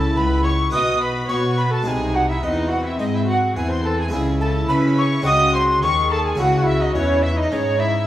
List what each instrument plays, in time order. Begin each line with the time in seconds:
Already playing: double bass section C#2, harpsichord C#3 C#4 E4 G#4, cello section C#3, viola section E4, violin section A4 A5
0.16 harpsichord C#2, double bass section C#2, cello section C#2, violin section B4 B5, recorder B5
0.44 violin section C#5 C#6, recorder C#6
0.71 double bass section B1, harpsichord B2 D#4 B4, cello section B2, viola section F#4, violin section D#5 D#6, recorder D#6
1.01 violin section B4 B5, recorder B5
1.29 double bass section B2, harpsichord B3, cello section B3, viola section F#4, violin section C#5 C#6, recorder C#6
1.58 violin section B4 B5, recorder B5
1.72 violin section A4 A5, recorder A5
1.82 harpsichord G#3 D#4 G#4, violin section G#5
1.87 double bass section C2, harpsichord C3, cello section C3, viola section D#4, violin section G#4, recorder G#5
2.14 violin section F#4 F#5, recorder F#5
2.29 violin section E4 E5, recorder E5
2.41 double bass section E2, harpsichord E3, cello section E3, viola section C4, violin section D#4 D#5, recorder D#5
2.71 violin section F#4 F#5, recorder F#5
2.85 violin section E4 E5, recorder E5
2.98 double bass section G#2, harpsichord G#3, cello section G#3, violin section D#4 D#5, recorder D#5
3.13 violin section E4 E5, recorder E5
3.28 violin section F#4 F#5, recorder F#5
3.55 double bass section E2, cello section E3, harpsichord E3, viola section C4, violin section G#4 G#5, recorder G#5
3.70 violin section C5 C6, recorder C6
3.84 violin section A4 A5, recorder A5
3.99 violin section G#4 G#5, recorder G#5
4.08 harpsichord G#3 E4 G#4, recorder G#5
4.13 double bass section C#2, cello section C#3, harpsichord C#3, viola section E4, violin section G#4 G#5
4.41 violin section A4 A5, recorder A5
4.69 double bass section C#3, cello section C#4, harpsichord C#4, violin section B4 B5, recorder B5
4.97 violin section C#5 C#6, recorder C#6
5.22 double bass section C#2, harpsichord G#3 C4 F#4, viola section F#4, violin section D#5
5.26 cello section C#3, harpsichord C#3, violin section D#6, recorder D#6
5.54 violin section C5 C6, recorder C6
5.82 double bass section D#2, cello section D#3, harpsichord D#3, viola section G#4, violin section C#5 C#6, recorder C#6
6.11 violin section A4 A5, recorder A5
6.24 violin section G#4 G#5, recorder G#5
6.35 double bass section C#2, cello section C#3, harpsichord G#3 C#4 E4, viola section F#4, violin section F#5, recorder F#5
6.40 harpsichord C#3, violin section F#4
6.67 violin section E4 E5, recorder E5
6.80 violin section D#4 D#5, recorder D#5
6.95 double bass section E2, cello section E3, harpsichord E3, violin section C#4 C#5, viola section E4, recorder C#5
7.23 violin section E4 E5, recorder E5
7.37 violin section D#4 D#5, recorder D#5
7.51 double bass section G#2, cello section G#3, harpsichord G#3, violin section C#4 C#5, viola section D#4, recorder C#5
7.79 violin section E4 E5, recorder E5